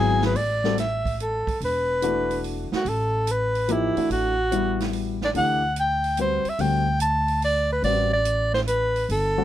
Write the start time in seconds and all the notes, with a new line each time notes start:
Already playing: G#1 F#3 B3 E4 G#4 G#5
0.22 B4, snare
0.35 A1 D5, open hi-hat
0.64 G3 C4 F#4 A4, snare
0.78 E5, snare, closed hi-hat
1.05 kick, open hi-hat
1.20 A4, closed hi-hat
1.47 muted upright bass stroke, kick, open hi-hat
1.61 E1, open hi-hat
1.65 B4
2.02 E3 A3 D4 F#4, closed hi-hat
2.31 open hi-hat
2.44 open hi-hat
2.72 F#4, muted upright bass stroke, snare
2.85 A1 A4, open hi-hat
3.27 closed hi-hat
3.31 B4
3.55 open hi-hat
3.68 F3 A#3 D#4 E4 G4, closed hi-hat
3.96 E3 A3 D4 F#4, muted upright bass stroke, open hi-hat
4.10 A1 F#4, open hi-hat
4.52 G3 B3 E4 F#4, closed hi-hat
4.80 snare, open hi-hat
4.93 open hi-hat
5.21 D5, snare
5.34 D2 E3 A3 D4 G4 F#5, open hi-hat
5.76 closed hi-hat
5.80 G5
6.04 open hi-hat
6.17 G3 C4 F#4 B4, closed hi-hat
6.21 C5
6.45 muted upright bass stroke, open hi-hat
6.49 E5
6.59 D2 D3 G3 C4 F#4 G5, open hi-hat
7.00 A5, closed hi-hat
7.28 open hi-hat
7.42 D5, open hi-hat
7.72 B4
7.82 A1 G3 C4 F#4 B4 D5, open hi-hat
8.13 D5
8.25 closed hi-hat
8.54 C5, snare
8.67 B4, closed hi-hat
8.96 open hi-hat
9.09 G1 A4, open hi-hat
9.37 D3 G3 C4 F#4